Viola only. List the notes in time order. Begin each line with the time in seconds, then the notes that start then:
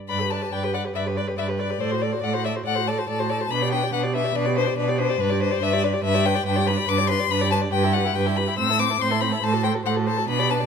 0.09 B4
0.20 G4
0.32 B4
0.42 G4
0.52 B4
0.63 G4
0.74 B4
0.84 G4
0.96 B4
1.06 G4
1.16 B4
1.27 G4
1.38 B4
1.48 G4
1.59 B4
1.70 G4
1.81 A4
1.92 F#4
2.03 A4
2.14 F#4
2.25 A4
2.34 F#4
2.45 A4
2.56 F#4
2.66 A4
2.78 F#4
2.88 A4
2.98 F#4
3.09 A4
3.19 F#4
3.31 A4
3.41 F#4
3.51 D4
3.62 G4
3.72 D4
3.83 G4
3.93 D4
4.04 G4
4.14 D4
4.23 G4
4.35 D4
4.46 G4
4.57 D4
4.66 G4
4.78 D4
4.88 G4
4.99 D4
5.10 G4
5.20 D4
5.31 G4
5.41 D4
5.52 G4
5.63 D4
5.73 G4
5.83 D4
5.93 G4
6.04 D4
6.14 G4
6.25 D4
6.36 G4
6.46 D4
6.57 G4
6.68 D4
6.79 G4
6.89 D4
6.99 G4
7.10 D4
7.20 G4
7.31 D4
7.42 G4
7.52 D4
7.63 G4
7.73 G4
7.84 E4
7.95 G4
8.04 E4
8.16 G4
8.26 E4
8.37 G4
8.47 E4
8.58 C4
8.69 E4
8.79 C4
8.90 E4
9.00 C4
9.11 E4
9.21 C4
9.33 E4
9.43 A4
9.53 F#4
9.64 A4
9.75 F#4
9.86 A4
9.97 F#4
10.08 A4
10.18 F#4
10.28 D4
10.39 G4
10.50 D4
10.60 G4